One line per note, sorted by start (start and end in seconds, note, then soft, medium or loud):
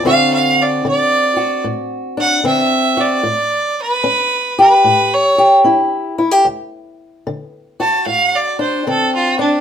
0.03 0.78 D2 medium
0.03 0.83 D3 medium
0.03 2.43 C4 medium
0.03 2.16 D4 medium
0.03 1.35 F#4 medium
0.03 0.31 F5 loud
0.33 0.63 F5 medium
0.62 0.86 D5 medium
0.85 1.59 D3 medium
0.85 1.64 D5 loud
1.36 2.96 F#4 medium
1.64 2.39 A2 medium
2.17 3.21 D4 medium
2.17 2.45 F#5 loud
2.44 3.18 D3 medium
2.44 3.21 C4 medium
2.44 3.02 E5 loud
2.97 3.21 F#4 medium
2.97 3.77 D5 medium
3.23 3.98 A2 medium
3.81 4.57 B4 loud
4.04 4.79 C#4 medium
4.59 5.37 G4 medium
4.59 5.15 B4 loud
4.84 5.59 A2 medium
5.14 5.55 C#5 loud
5.38 6.18 G4 medium
5.64 6.39 C#4 medium
5.64 6.17 E4 medium
6.18 6.31 E4 medium
6.31 6.45 G4 medium
6.45 7.20 D2 medium
7.27 8.01 D3 medium
7.80 9.61 F#4 medium
7.80 8.06 A5 medium
8.06 8.81 A2 medium
8.06 8.37 F5 medium
8.35 8.60 D5 medium
8.59 9.38 D4 medium
8.59 8.86 C5 medium
8.87 9.61 D3 medium
8.87 9.61 C4 medium
8.87 9.14 A4 medium
9.15 9.39 F4 medium
9.39 9.61 D4 medium